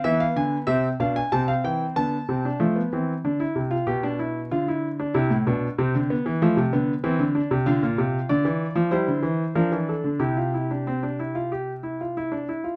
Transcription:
<<
  \new Staff \with { instrumentName = "Grand piano" } { \time 4/4 \key d \minor \tempo 4 = 94 << { e''16 f''16 gis''8 e''8 f''16 gis''16 a''16 f''16 g''8 a''4 | r1 | r1 | \key c \mixolydian f''4 d''4 c''4 bes'8 a'8 |
g'2.~ g'8 r8 | } \\ { b4 c'8 d'8 c'4 b8 c'16 d'16 | a16 b16 c'8 d'16 e'8 f'16 g'16 d'16 e'8 f'16 e'8 d'16 | e'8 d'8 c'8 b8 a8 b8 c'8 d'8 | f'2 e'4 d'4 |
e'16 f'16 e'16 d'16 c'16 d'16 e'16 f'16 g'8 e'16 f'16 e'16 d'16 e'16 f'16 | } >> }
  \new Staff \with { instrumentName = "Grand piano" } { \clef bass \time 4/4 \key d \minor e8 d8 c8 b,8 c8 e8 d8 c8 | f8 e8 d8 c8 b,4 d4 | c16 a,16 b,8 c16 d8 e16 f16 c16 d8 e16 d8 c16 | \key c \mixolydian d16 bes,16 c8 d16 e8 f16 g16 d16 e8 f16 e8 d16 |
c2.~ c8 r8 | }
>>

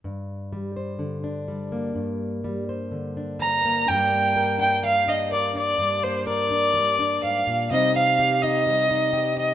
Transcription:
<<
  \new Staff \with { instrumentName = "Fiddle" } { \time 4/4 \key g \phrygian \tempo 4 = 126 r1 | r2. bes''4 | g''4. g''8 f''8 ees''8 d''8 d''8~ | d''8 c''8 d''2 f''4 |
ees''8 f''4 ees''2 ees''8 | }
  \new Staff \with { instrumentName = "Steel-string acoustic guitar" } { \time 4/4 \key g \phrygian << { r4. c''4 d'4 bes8~ | bes4. c''4 d'4 bes8 | <g bes d' bes'>8 bes8 bes'8 d'4 d'8 bes'8 d'8~ | d'8 bes8 bes'8 d'4 d'4. |
<g c' ees' g'>8 c'8 g'8 ees'4 ees'8 g'8 ees'8 | } \\ { g,4 g4 d4 g4 | g,4 g4 d4 g4 | g,2 g2 | g,2 g4 aes,8 bes,8 |
c2 g2 | } >> }
>>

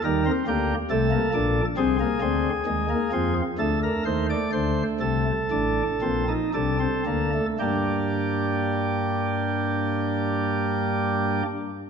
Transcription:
<<
  \new Staff \with { instrumentName = "Pipe organ" } { \time 4/4 \key g \minor \tempo 4 = 60 bes'8 g'8 a'4 aes'2 | a'16 bes'16 c''16 d''16 c''8 a'4. a'4 | <d' g'>1 | }
  \new Staff \with { instrumentName = "Pipe organ" } { \clef bass \time 4/4 \key g \minor << { g16 c'16 bes8 a16 bes16 d'8 c'16 bes16 c'8 aes16 bes16 c'8 | a2 d'8 c'16 ees'16 d'16 c'16 bes16 a16 | bes1 | } \\ { <ees, ees>8 <d, d>8 <c, c>8 <bes,, bes,>8 <c, c>8 <d, d>8 <ees, ees>8 <f, f>8 | <d, d>8 <ees, ees>8 <d, d>8 <c, c>8 <a,, a,>8 <bes,, bes,>8 <c, c>8 <d, d>8 | <g, g>1 | } >> }
>>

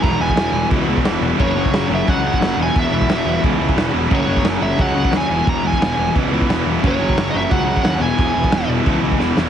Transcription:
<<
  \new Staff \with { instrumentName = "Lead electric guitar" } { \time 4/4 \key e \lydian \tempo 4 = 177 ais''8 gis''4. r2 | cis''4. e''8 fis''8 fis''4 gis''8 | e''2 r2 | cis''4 r8 e''8 fis''4 gis''4 |
ais''8 gis''4. r2 | cis''4~ cis''16. dis''32 e''8 fis''4 fis''8 gis''8~ | gis''4. r2 r8 | }
  \new Staff \with { instrumentName = "Distorted electric guitar" } { \clef bass \time 4/4 \key e \lydian <e, b, e>8 <e, b, e>8 <e, b, e>8 <e, b, e>8 <e, b, e>8 <e, b, e>8 <e, b, e>8 <e, b, e>8 | <fis, cis fis>8 <fis, cis fis>8 <fis, cis fis>8 <fis, cis fis>8 <fis, cis fis>8 <fis, cis fis>8 <fis, cis fis>8 <e, b, e>8 | <e, b, e>8 <e, b, e>8 <e, b, e>8 <e, b, e>8 <e, b, e>8 <e, b, e>8 <e, b, e>8 <e, b, e>8 | <fis, cis fis>8 <fis, cis fis>8 <fis, cis fis>8 <fis, cis fis>8 <fis, cis fis>8 <fis, cis fis>8 <fis, cis fis>8 <e, b, e>8 |
<e, b, e>8 <e, b, e>8 <e, b, e>8 <e, b, e>8 <e, b, e>8 <e, b, e>8 <e, b, e>8 <e, b, e>8 | <fis, cis fis>8 <fis, cis fis>8 <fis, cis fis>8 <fis, cis fis>8 <fis, cis fis>8 <fis, cis fis>8 <fis, cis fis>8 <e, b, e>8 | <e, b, e>8 <e, b, e>8 <e, b, e>8 <e, b, e>8 <e, b, e>8 <e, b, e>8 <e, b, e>8 <e, b, e>8 | }
  \new Staff \with { instrumentName = "Overdriven electric guitar" } { \clef bass \time 4/4 \key e \lydian <e, b, e>8 <e, b, e>8 <e, b, e>8 <e, b, e>8 <e, b, e>8 <e, b, e>8 <e, b, e>8 <e, b, e>8 | <fis, cis fis>8 <fis, cis fis>8 <fis, cis fis>8 <fis, cis fis>8 <fis, cis fis>8 <fis, cis fis>8 <fis, cis fis>8 <e, b, e>8 | <e, b, e>8 <e, b, e>8 <e, b, e>8 <e, b, e>8 <e, b, e>8 <e, b, e>8 <e, b, e>8 <e, b, e>8 | <fis, cis fis>8 <fis, cis fis>8 <fis, cis fis>8 <fis, cis fis>8 <fis, cis fis>8 <fis, cis fis>8 <fis, cis fis>8 <e, b, e>8 |
<e, b, e>8 <e, b, e>8 <e, b, e>8 <e, b, e>8 <e, b, e>8 <e, b, e>8 <e, b, e>8 <e, b, e>8 | <fis, cis fis>8 <fis, cis fis>8 <fis, cis fis>8 <fis, cis fis>8 <fis, cis fis>8 <fis, cis fis>8 <fis, cis fis>8 <e, b, e>8 | <e, b, e>8 <e, b, e>8 <e, b, e>8 <e, b, e>8 <e, b, e>8 <e, b, e>8 <e, b, e>8 <e, b, e>8 | }
  \new Staff \with { instrumentName = "Overdriven electric guitar" } { \clef bass \time 4/4 \key e \lydian <e, b, e>4 <e, b, e>2~ <e, b, e>8 r8 | <fis, cis fis>4. <fis, cis fis>2 <e, b, e>8~ | <e, b, e>4 <e, b, e>2~ <e, b, e>8 r8 | <fis, cis fis>4. <fis, cis fis>2 <e, b, e>8~ |
<e, b, e>4 <e, b, e>2~ <e, b, e>8 r8 | <fis, cis fis>4. <fis, cis fis>2 <e, b, e>8~ | <e, b, e>4 <e, b, e>2~ <e, b, e>8 r8 | }
  \new Staff \with { instrumentName = "Picked electric bass" } { \clef bass \time 4/4 \key e \lydian e,,8 e,,8 e,,8 e,,8 cis,8 cis,8 e,,8 e,,8 | fis,,8 fis,,8 fis,,8 fis,,8 cis,4 fis,,8 e,,8 | e,,8 e,,8 e,,8 e,,8 cis,8 cis,8 e,,8 e,,8 | fis,,8 fis,,8 fis,,8 fis,,8 cis,4 dis,8 e,,8 |
e,,8 e,,8 e,,8 e,,8 cis,8 cis,8 e,,8 e,,8 | fis,,8 fis,,8 fis,,8 fis,,8 cis,4 dis,8 e,,8 | e,,8 e,,8 e,,8 e,,8 cis,8 cis,8 e,,8 e,,8 | }
  \new DrumStaff \with { instrumentName = "Drums" } \drummode { \time 4/4 <cymc bd>8. bd16 <cymc sn>4 <cymc bd>8. bd16 <cymc sn>4 | <cymc bd>8. bd16 <cymc sn>4 <cymc bd>8. bd16 <cymc sn>4 | <cymc bd>8. bd16 <cymc sn>4 <cymc bd>8. bd16 <cymc sn>4 | <cymc bd>8. bd16 <cymc sn>4 <cymc bd>8. bd16 <cymc sn>4 |
<cymc bd>8. bd16 <cymc sn>4 <cymc bd>8. bd16 <cymc sn>4 | <cymc bd>8. bd16 <cymc sn>4 <cymc bd>8. bd16 <cymc sn>4 | <cymc bd>8. bd16 <cymc sn>4 <cymc bd>8. bd16 sn8 sn8 | }
>>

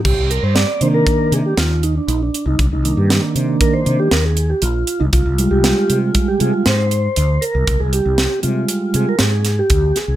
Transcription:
<<
  \new Staff \with { instrumentName = "Tonewheel organ" } { \time 5/4 \key c \minor \tempo 4 = 118 g'8 bes'16 c''16 d''8 c''16 bes'8. aes'16 g'16 f'8 ees'16 d'16 ees'16 d'8 ees'16 | d'16 ees'8 g'8 r8. bes'16 c''8 g'16 bes'16 aes'8 g'16 f'8. ees'16 | f'8. g'4 r16 f'16 g'16 aes'16 f'16 c''4. bes'8~ | bes'16 aes'16 g'4 r4 aes'16 bes'16 aes'8. g'8. aes'8 | }
  \new Staff \with { instrumentName = "Tonewheel organ" } { \time 5/4 \key c \minor r4. <ees bes d'>4. r2 | r8 <ees bes d'>2 <ees bes d'>8 r2 | r8 <g aes f'>2 <g aes f'>8 r2 | r4. <g aes f'>4. r2 | }
  \new Staff \with { instrumentName = "Fretless electric bass" } { \clef bass \time 5/4 \key c \minor c,16 c,8 g,8 r16 c8 r8 c16 r16 ees,4 bes,,8 r16 c,16 | c,16 c,8 g,8 r16 c8 r8 c16 r16 ees,4 bes,,8 r16 c,16 | c,16 c,8 c,8 r16 c8 r8 c16 r16 aes,4 d,8 r16 c,16 | c,16 c,8 c,8 r16 c8 r8 c16 r16 aes,4 d,8 r16 c,16 | }
  \new DrumStaff \with { instrumentName = "Drums" } \drummode { \time 5/4 <cymc bd>8 hh8 <hh sn>8 hh8 <hh bd>8 hh8 <hh sn>8 hh8 hh8 hh8 | <hh bd>8 hh8 <hh sn>8 hh8 <hh bd>8 hh8 <hh sn>8 hh8 hh8 hh8 | <hh bd>8 hh8 <hh sn>8 hh8 <hh bd>8 hh8 <hh sn>8 hh8 hh8 hh8 | <hh bd>8 hh8 <hh sn>8 hh8 hh8 hh8 <hh sn>8 <hh sn>8 <hh bd>8 <hh sn>8 | }
>>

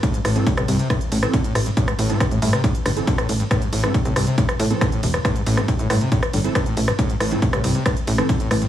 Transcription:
<<
  \new Staff \with { instrumentName = "Synth stab" } { \time 4/4 \key a \minor \tempo 4 = 138 r8. <e c' a'>16 r4. r16 <e c' a'>16 r4 | r8. <e c' a'>16 r4. r16 <e c' a'>16 r4 | r8. <e c' a'>16 r4. r16 <e c' a'>16 r4 | r8. <e c' a'>16 r4. r16 <e c' a'>16 r4 |
r8. <e c' a'>16 r4. r16 <e c' a'>16 r4 | }
  \new Staff \with { instrumentName = "Acid bass" } { \clef bass \time 4/4 \key a \minor a,16 g,16 a,16 g,16 a,16 a,16 g,16 c16 a,16 r16 a,16 r16 d16 a,16 a,16 g,16 | a,16 g,16 a,16 g,16 a,16 a,16 g,16 c16 a,16 r16 a,16 r16 d16 a,16 a,16 g,16 | a,16 g,16 a,16 g,16 r16 a,16 g,16 c16 a,16 r16 a,16 r16 d16 a,16 a,16 g,16 | a,16 g,16 a,16 g,16 a,16 a,16 g,16 c16 a,16 r16 a,16 r16 d16 a,16 a,16 g,16 |
a,16 g,16 a,16 g,16 a,16 a,16 g,16 c16 a,16 r16 a,16 r16 d16 a,16 a,16 g,16 | }
  \new Staff \with { instrumentName = "Analog synth bass" } { \clef bass \time 4/4 \key a \minor r8 a,,16 r8 c,16 c,16 r8. a,,16 r8. a,,16 r16 | r8 a,,16 r8 a,,16 a,16 r8. g,,16 r8. a,,16 r16 | r8 a,,16 r8 c,16 c,16 r8. a,16 r8. e,,16 r16 | r8 a,,16 r8 a,,16 a,16 r8. g,,16 r8. a,,16 r16 |
r8 a,,16 r8 c,16 c,16 r8. a,,16 r8. a,,16 r16 | }
  \new DrumStaff \with { instrumentName = "Drums" } \drummode { \time 4/4 <hh bd cymr>16 hh16 <hho cymr ss>16 hh16 <hh bd cymr>16 <hh ss>16 <hho cymr>16 hh16 <hh bd cymr ss>16 hh16 <hho cymr>16 <hh ss>16 <hh bd cymr>16 hh16 <hho cymr ss>16 hh16 | <hh bd cymr>16 <hh ss>16 <hho cymr>16 hh16 <hh bd cymr ss>16 hh16 <hho cymr>16 <hh ss>16 <hh bd cymr>16 hh16 <hho cymr ss>16 hh16 <hh bd cymr>16 <hh ss>16 <hho cymr>16 hh16 | <hh bd cymr ss>16 hh16 <hho cymr>16 ss16 <hh bd cymr>16 hh16 <hho cymr ss>16 hh16 <hh bd cymr>16 <hh ss>16 <hho cymr>16 hh16 <hh bd cymr ss>16 hh16 <hho cymr>16 <hh ss>16 | <hh bd cymr ss>16 hh16 <hho cymr>16 ss16 <hh bd cymr>16 hh16 <hho cymr ss>16 hh16 <hh bd cymr>16 <hh ss>16 <hho cymr>16 hh16 <hh bd cymr ss>16 hh16 <hho cymr>16 <hh ss>16 |
<hh bd cymr>16 hh16 <hho cymr ss>16 hh16 <hh bd cymr>16 <hh ss>16 <hho cymr>16 hh16 <hh bd cymr ss>16 hh16 <hho cymr>16 <hh ss>16 <hh bd cymr>16 hh16 <hho cymr ss>16 hh16 | }
>>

